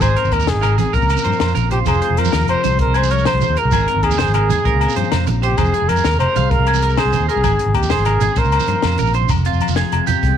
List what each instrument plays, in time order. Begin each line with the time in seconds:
Already playing: steel-string acoustic guitar G#3
0.01 fingered electric bass G#1, steel-string acoustic guitar G#2 D#4, clean electric guitar G#4, muted trumpet C5, kick, closed hi-hat, high conga, low agogo, shekere
0.16 steel-string acoustic guitar C4, clean electric guitar A#4, closed hi-hat
0.24 fingered electric bass G#1, low conga, shekere
0.32 fingered electric bass D#2, steel-string acoustic guitar D#3, muted trumpet A#4, kick, closed hi-hat, low conga, low agogo, shekere
0.40 high conga, low conga, shekere
0.47 fingered electric bass F1, steel-string acoustic guitar D#4, muted trumpet G#4, snare, closed hi-hat, shekere
0.55 fingered electric bass G#1
0.62 steel-string acoustic guitar G#2, clean electric guitar A#4, closed hi-hat, low conga, low agogo, shekere
0.78 fingered electric bass A1, steel-string acoustic guitar C4, clean electric guitar G#4, muted trumpet G#4, closed hi-hat, high conga, shekere
0.93 fingered electric bass A#1, steel-string acoustic guitar A#2 F3 C4, clean electric guitar A#4, muted trumpet A#4, kick, closed hi-hat, shekere
0.97 steel-string acoustic guitar C#4, muted steel-string acoustic guitar stroke
1.02 fingered electric bass C#2, low conga, shekere
1.09 steel-string acoustic guitar C4, closed hi-hat, low agogo, shekere
1.17 high conga, shekere
1.24 fingered electric bass G2, steel-string acoustic guitar F3, clean electric guitar C5, closed hi-hat
1.33 shekere
1.40 fingered electric bass F2, steel-string acoustic guitar C#4, snare, closed hi-hat, high conga, low agogo
1.48 shekere
1.55 fingered electric bass A#1, steel-string acoustic guitar F2, clean electric guitar A#4, closed hi-hat, low conga, shekere
1.71 steel-string acoustic guitar F4, muted trumpet G4, clean electric guitar C5, closed hi-hat, low conga, shekere
1.86 fingered electric bass F1, steel-string acoustic guitar F2 C4, muted trumpet G#4, clean electric guitar C5, kick, closed hi-hat, high conga, low agogo, shekere
1.94 shekere
2.02 steel-string acoustic guitar G#3, clean electric guitar C5, closed hi-hat
2.10 fingered electric bass F1, low conga
2.17 fingered electric bass F2, steel-string acoustic guitar F3, muted trumpet A#4, closed hi-hat, low agogo
2.25 high conga, shekere
2.32 fingered electric bass D#2, steel-string acoustic guitar C4, clean electric guitar A#4, snare, closed hi-hat, shekere
2.40 fingered electric bass F1, shekere
2.48 steel-string acoustic guitar C3, muted trumpet C5, closed hi-hat, low conga, low agogo
2.64 fingered electric bass C2, steel-string acoustic guitar G#4, clean electric guitar C5, closed hi-hat, high conga, shekere
2.79 steel-string acoustic guitar F2 C4, muted trumpet A#4, kick, closed hi-hat
2.87 fingered electric bass C2, low conga
2.94 steel-string acoustic guitar G#3, clean electric guitar G#4, muted trumpet C5, closed hi-hat, low agogo
3.03 high conga, shekere
3.11 steel-string acoustic guitar F3, clean electric guitar A#4, muted trumpet C#5, closed hi-hat
3.18 shekere
3.25 clean electric guitar C5, muted trumpet C5, snare, closed hi-hat, low conga, low agogo
3.33 fingered electric bass C2
3.41 steel-string acoustic guitar F2, clean electric guitar C5, closed hi-hat, high conga, shekere
3.49 fingered electric bass D#2
3.56 steel-string acoustic guitar G2, clean electric guitar A#4, muted trumpet A#4, closed hi-hat, shekere
3.65 fingered electric bass C2, low conga
3.72 fingered electric bass G#1, steel-string acoustic guitar G#2 D#4, clean electric guitar G#4, kick, closed hi-hat, high conga, low agogo, shekere
3.80 shekere
3.88 steel-string acoustic guitar C4, clean electric guitar A#4, closed hi-hat
3.96 fingered electric bass G#1, low conga
4.03 fingered electric bass D#2, steel-string acoustic guitar D#3, muted trumpet G#4, kick, closed hi-hat, low agogo
4.11 high conga, shekere
4.18 fingered electric bass F1, steel-string acoustic guitar F2, muted trumpet G#4, clean electric guitar C5, snare, closed hi-hat, low conga, shekere
4.27 fingered electric bass G#1, shekere
4.34 steel-string acoustic guitar G2, clean electric guitar A#4, closed hi-hat, low conga, low agogo
4.49 fingered electric bass F2, steel-string acoustic guitar G#2, clean electric guitar G#4, closed hi-hat, high conga, shekere
4.65 fingered electric bass A#1, steel-string acoustic guitar A#2 C#4 F4, clean electric guitar A#4, muted steel-string acoustic guitar stroke, kick, closed hi-hat
4.73 fingered electric bass C#2, low conga
4.81 steel-string acoustic guitar C4, closed hi-hat, low agogo
4.89 shekere
4.96 fingered electric bass G2, steel-string acoustic guitar F3, clean electric guitar C5, closed hi-hat
5.04 shekere
5.12 fingered electric bass F2, steel-string acoustic guitar A#2, snare, closed hi-hat, low conga, low agogo
5.27 fingered electric bass A#1, steel-string acoustic guitar G#2, muted clean electric guitar stroke, closed hi-hat, high conga, shekere
5.42 steel-string acoustic guitar G2, muted trumpet G4, clean electric guitar C5, closed hi-hat, shekere
5.51 low conga
5.58 fingered electric bass F1, steel-string acoustic guitar F2 C4, muted trumpet G#4, clean electric guitar C5, kick, closed hi-hat, high conga, low agogo, shekere
5.65 shekere
5.74 steel-string acoustic guitar G#3, clean electric guitar G#4, closed hi-hat
5.82 fingered electric bass F1, low conga
5.89 fingered electric bass F2, muted trumpet A#4, muted steel-string acoustic guitar stroke, closed hi-hat, low agogo
5.96 high conga, shekere
6.04 fingered electric bass D#2, steel-string acoustic guitar C4, clean electric guitar A#4, snare, closed hi-hat, shekere
6.12 fingered electric bass F1, shekere
6.19 steel-string acoustic guitar C3, muted trumpet C5, closed hi-hat, low conga, low agogo
6.36 fingered electric bass C2, steel-string acoustic guitar G#4, clean electric guitar F5, closed hi-hat, high conga, shekere
6.51 steel-string acoustic guitar F2 C4, muted trumpet A#4, kick, closed hi-hat
6.59 fingered electric bass C2, low conga
6.67 steel-string acoustic guitar G#3, clean electric guitar G#4, closed hi-hat, low agogo
6.74 high conga, shekere
6.82 clean electric guitar A#4, closed hi-hat
6.90 shekere
6.97 steel-string acoustic guitar C4, muted trumpet G#4, clean electric guitar C5, snare, closed hi-hat, low conga, low agogo
7.05 fingered electric bass C2
7.13 steel-string acoustic guitar C3, clean electric guitar C5, closed hi-hat, high conga, shekere
7.20 fingered electric bass D#2
7.28 steel-string acoustic guitar C4, muted trumpet G#4, clean electric guitar A#4, closed hi-hat, shekere
7.36 fingered electric bass C2, low conga
7.43 fingered electric bass G#1, steel-string acoustic guitar G#2, clean electric guitar G#4, kick, closed hi-hat, high conga, low agogo, shekere
7.59 steel-string acoustic guitar C4, closed hi-hat
7.66 fingered electric bass G#1, low conga
7.74 fingered electric bass D#2, steel-string acoustic guitar D#3, muted trumpet G4, kick, closed hi-hat, low agogo
7.83 high conga, shekere
7.90 fingered electric bass F1, steel-string acoustic guitar F2, muted trumpet G#4, clean electric guitar C5, snare, closed hi-hat
7.98 fingered electric bass G#1, shekere
8.05 steel-string acoustic guitar G2, clean electric guitar A#4, closed hi-hat, low conga, low agogo, shekere
8.21 fingered electric bass G#1, steel-string acoustic guitar G#2, clean electric guitar G#4, closed hi-hat, high conga, shekere
8.36 fingered electric bass A#1, steel-string acoustic guitar A#2 C#4, muted trumpet A#4, clean electric guitar C5, kick, closed hi-hat, low conga, shekere
8.44 fingered electric bass C#2, low conga, shekere
8.51 steel-string acoustic guitar C4, closed hi-hat, low agogo, shekere
8.60 high conga, shekere
8.67 fingered electric bass G2, steel-string acoustic guitar F3, clean electric guitar C5, closed hi-hat, shekere
8.82 fingered electric bass F2, steel-string acoustic guitar A#2, snare, closed hi-hat, low conga, low agogo, shekere
8.91 low conga, shekere
8.98 fingered electric bass A#1, steel-string acoustic guitar G#2, clean electric guitar A#4, closed hi-hat, high conga, low conga, shekere
9.07 shekere
9.14 steel-string acoustic guitar G2, clean electric guitar C5, closed hi-hat, low conga, shekere
9.23 low conga
9.29 fingered electric bass F1, steel-string acoustic guitar F2, muted steel-string acoustic guitar stroke, kick, closed hi-hat, high conga, low agogo, shekere
9.36 low conga, shekere
9.45 steel-string acoustic guitar C4, clean electric guitar F4, closed hi-hat
9.53 fingered electric bass F1, shekere
9.60 steel-string acoustic guitar F3, closed hi-hat, low conga, low agogo
9.68 fingered electric bass F1, high conga, shekere
9.76 steel-string acoustic guitar C4, clean electric guitar G#4, snare, closed hi-hat, low conga
9.86 low conga
9.91 fingered electric bass F1, steel-string acoustic guitar C3 F4, closed hi-hat, low agogo
10.07 fingered electric bass F2, clean electric guitar G4, closed hi-hat, high conga, low conga, shekere
10.23 fingered electric bass C2, steel-string acoustic guitar F2 G#3, kick, closed hi-hat, shekere
10.31 low conga